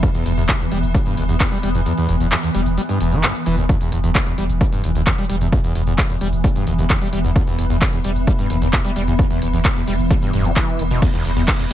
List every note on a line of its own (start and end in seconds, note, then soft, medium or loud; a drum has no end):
0.00 0.09 E2 loud
0.00 3.68 E3 medium
0.00 3.68 B3 medium
0.00 kick loud
0.00 closed hi-hat medium
0.15 0.24 E2 loud
0.15 closed hi-hat medium
0.26 0.37 E1 loud
0.26 0.32 E2 medium
0.26 open hi-hat loud
0.37 0.49 E1 medium
0.37 0.44 E2 medium
0.37 closed hi-hat medium
0.49 0.53 E2 medium
0.49 kick loud
0.49 clap loud
0.49 closed hi-hat medium
0.60 0.67 E2 medium
0.60 closed hi-hat medium
0.72 0.83 E1 loud
0.72 0.78 G3 medium
0.72 open hi-hat loud
0.83 0.94 E1 medium
0.83 closed hi-hat medium
0.95 0.98 G3 medium
0.95 kick loud
0.95 closed hi-hat medium
1.06 1.15 G2 medium
1.06 closed hi-hat medium
1.17 1.28 E1 loud
1.17 1.24 D#2 medium
1.17 open hi-hat loud
1.29 1.40 E1 medium
1.29 1.35 E2 medium
1.29 closed hi-hat medium
1.40 1.47 E2 medium
1.40 kick loud
1.40 clap loud
1.40 closed hi-hat medium
1.52 1.58 G3 loud
1.52 closed hi-hat medium
1.63 1.74 E1 loud
1.63 1.70 G3 medium
1.63 open hi-hat loud
1.75 1.86 E1 medium
1.75 1.81 E2 medium
1.75 closed hi-hat medium
1.86 1.93 E2 loud
1.86 closed hi-hat medium
1.98 2.07 E2 loud
1.98 closed hi-hat medium
2.09 2.20 E1 loud
2.09 2.15 E2 medium
2.09 open hi-hat loud
2.20 2.32 E1 medium
2.20 2.27 E2 medium
2.20 closed hi-hat medium
2.32 2.36 E2 medium
2.32 clap loud
2.32 closed hi-hat medium
2.43 2.50 E2 medium
2.43 closed hi-hat medium
2.55 2.66 E1 loud
2.55 2.61 G3 medium
2.55 open hi-hat loud
2.66 2.77 E1 medium
2.66 closed hi-hat medium
2.78 2.81 G3 medium
2.78 closed hi-hat medium
2.89 2.99 G2 medium
2.89 closed hi-hat medium
3.01 3.12 E1 loud
3.01 3.14 E2 medium
3.01 open hi-hat loud
3.12 3.23 E1 medium
3.12 3.25 E3 medium
3.12 closed hi-hat medium
3.23 3.33 E1 loud
3.23 clap loud
3.23 closed hi-hat medium
3.35 closed hi-hat medium
3.46 3.57 E1 loud
3.46 3.56 E3 loud
3.46 open hi-hat loud
3.58 3.69 E1 medium
3.58 3.64 D#2 medium
3.58 closed hi-hat medium
3.69 3.76 E2 loud
3.69 11.73 E3 medium
3.69 11.73 B3 medium
3.69 kick loud
3.69 closed hi-hat medium
3.81 3.90 E2 loud
3.81 closed hi-hat medium
3.92 4.03 E1 medium
3.92 3.99 E2 medium
3.92 open hi-hat loud
4.04 4.15 E1 medium
4.04 4.10 E2 medium
4.04 closed hi-hat medium
4.15 4.19 E2 medium
4.15 kick loud
4.15 clap loud
4.15 closed hi-hat medium
4.27 4.33 E2 medium
4.27 closed hi-hat medium
4.38 4.49 E1 loud
4.38 4.44 G3 medium
4.38 open hi-hat loud
4.50 4.61 E1 medium
4.50 closed hi-hat medium
4.61 4.65 G3 medium
4.61 kick loud
4.61 closed hi-hat medium
4.73 4.82 G2 medium
4.73 closed hi-hat medium
4.84 4.95 E1 loud
4.84 4.90 D#2 medium
4.84 open hi-hat loud
4.95 5.06 E1 medium
4.95 5.02 D#2 medium
4.95 closed hi-hat medium
5.07 5.13 E2 medium
5.07 kick loud
5.07 clap loud
5.07 closed hi-hat medium
5.18 5.25 G3 loud
5.18 closed hi-hat medium
5.29 5.40 E1 loud
5.29 5.36 G3 medium
5.29 open hi-hat loud
5.41 5.52 E1 medium
5.41 5.47 E2 medium
5.41 closed hi-hat medium
5.52 5.59 E2 loud
5.52 kick loud
5.52 closed hi-hat medium
5.64 5.73 E2 loud
5.64 closed hi-hat medium
5.75 5.86 E1 loud
5.75 5.82 E2 medium
5.75 open hi-hat loud
5.87 5.98 E1 medium
5.87 5.93 E2 medium
5.87 closed hi-hat medium
5.98 6.02 E2 medium
5.98 kick loud
5.98 clap loud
5.98 closed hi-hat medium
6.10 6.16 E2 medium
6.10 closed hi-hat medium
6.21 6.32 E1 loud
6.21 6.28 G3 medium
6.21 open hi-hat loud
6.33 6.44 E1 medium
6.33 closed hi-hat medium
6.44 6.48 G3 medium
6.44 kick loud
6.44 closed hi-hat medium
6.56 6.65 G2 medium
6.56 closed hi-hat medium
6.67 6.78 E1 loud
6.67 6.73 D#2 medium
6.67 open hi-hat loud
6.78 6.90 E1 medium
6.78 6.85 D#2 medium
6.78 closed hi-hat medium
6.90 6.96 E2 medium
6.90 kick loud
6.90 clap loud
6.90 closed hi-hat medium
7.01 7.08 G3 loud
7.01 closed hi-hat medium
7.13 7.24 E1 loud
7.13 7.19 G3 medium
7.13 open hi-hat loud
7.24 7.35 E1 medium
7.24 7.31 E2 medium
7.24 closed hi-hat medium
7.36 7.42 E2 loud
7.36 kick loud
7.36 closed hi-hat medium
7.47 7.57 E2 loud
7.47 closed hi-hat medium
7.59 7.70 E1 loud
7.59 7.65 E2 medium
7.59 open hi-hat loud
7.70 7.81 E1 medium
7.70 7.76 E2 medium
7.70 closed hi-hat medium
7.82 7.85 E2 medium
7.82 kick loud
7.82 clap loud
7.82 closed hi-hat medium
7.93 7.99 E2 medium
7.93 closed hi-hat medium
8.04 8.15 E1 loud
8.04 8.11 G3 medium
8.04 open hi-hat loud
8.16 8.27 E1 medium
8.16 closed hi-hat medium
8.27 8.31 G3 medium
8.27 kick loud
8.27 closed hi-hat medium
8.39 8.48 G2 medium
8.39 closed hi-hat medium
8.50 8.61 E1 loud
8.50 8.57 D#2 medium
8.50 open hi-hat loud
8.62 8.73 E1 medium
8.62 8.68 D#2 medium
8.62 closed hi-hat medium
8.73 8.80 E2 medium
8.73 kick loud
8.73 clap loud
8.73 closed hi-hat medium
8.85 8.91 G3 loud
8.85 closed hi-hat medium
8.96 9.07 E1 loud
8.96 9.02 G3 medium
8.96 open hi-hat loud
9.08 9.19 E1 medium
9.08 9.14 E2 medium
9.08 closed hi-hat medium
9.19 9.25 E2 loud
9.19 kick loud
9.19 closed hi-hat medium
9.31 9.40 E2 loud
9.31 closed hi-hat medium
9.42 9.53 E1 loud
9.42 9.48 E2 medium
9.42 open hi-hat loud
9.53 9.65 E1 medium
9.53 9.60 E2 medium
9.53 closed hi-hat medium
9.65 9.69 E2 medium
9.65 kick loud
9.65 clap loud
9.65 closed hi-hat medium
9.76 9.83 E2 medium
9.76 closed hi-hat medium
9.88 9.99 E1 loud
9.88 9.94 G3 medium
9.88 open hi-hat loud
9.99 10.10 E1 medium
9.99 closed hi-hat medium
10.11 10.14 G3 medium
10.11 kick loud
10.11 closed hi-hat medium
10.22 10.32 G2 medium
10.22 closed hi-hat medium
10.33 10.45 E1 loud
10.33 10.47 G2 loud
10.33 open hi-hat loud
10.45 10.56 E1 medium
10.45 10.51 E2 medium
10.45 closed hi-hat medium
10.56 10.81 E3 medium
10.56 kick loud
10.56 clap loud
10.56 closed hi-hat medium
10.68 closed hi-hat medium
10.79 10.90 E1 loud
10.79 10.83 D#3 medium
10.79 open hi-hat loud
10.91 11.02 E1 medium
10.91 11.00 B2 medium
10.91 closed hi-hat medium
11.02 11.09 E2 loud
11.02 kick loud
11.02 closed hi-hat medium
11.02 ride medium
11.14 11.23 E2 loud
11.14 closed hi-hat medium
11.25 11.36 E1 loud
11.25 11.31 E2 medium
11.25 open hi-hat loud
11.36 11.48 E1 medium
11.36 11.43 E2 medium
11.36 closed hi-hat medium
11.48 11.52 E2 medium
11.48 kick loud
11.48 clap loud
11.48 closed hi-hat medium
11.48 ride medium
11.59 11.66 E2 medium
11.59 closed hi-hat medium